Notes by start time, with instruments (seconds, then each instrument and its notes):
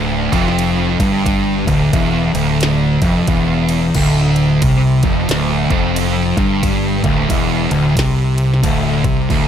Already playing: fingered electric bass D1, distorted electric guitar D2
0.32 fingered electric bass F1, distorted electric guitar F2, kick, ride
0.48 snare
0.59 ride
1.00 fingered electric bass G1, distorted electric guitar G2, kick, ride
1.26 kick, ride
1.67 fingered electric bass D1, distorted electric guitar D2, kick, ride
1.93 fingered electric bass E1, distorted electric guitar E2, kick, ride
2.34 fingered electric bass D1, distorted electric guitar D2, ride
2.61 snare, ride
3.02 fingered electric bass F1, distorted electric guitar F2, kick, ride
3.27 fingered electric bass E1, distorted electric guitar E2, kick, ride
3.69 ride
3.95 fingered electric bass D1, distorted electric guitar D2, kick, crash
4.36 ride
4.62 fingered electric bass C2, distorted electric guitar C3, kick, ride
5.03 fingered electric bass F1, distorted electric guitar F2, kick, ride
5.29 fingered electric bass D1, distorted electric guitar D2, snare, ride
5.70 fingered electric bass F1, distorted electric guitar F2, kick, ride
5.96 ride
6.37 fingered electric bass G1, distorted electric guitar G2, kick, ride
6.63 kick, ride
7.04 fingered electric bass D1, distorted electric guitar D2, kick, ride
7.29 fingered electric bass E1, distorted electric guitar E2, kick, ride
7.71 fingered electric bass D1, distorted electric guitar D2, ride
7.96 fingered electric bass C2, distorted electric guitar C3, kick, snare, ride
8.38 ride
8.54 snare
8.63 fingered electric bass D1, distorted electric guitar D2, kick, ride
9.04 fingered electric bass C2, distorted electric guitar C3, kick, ride
9.30 fingered electric bass D1, distorted electric guitar D2, kick, crash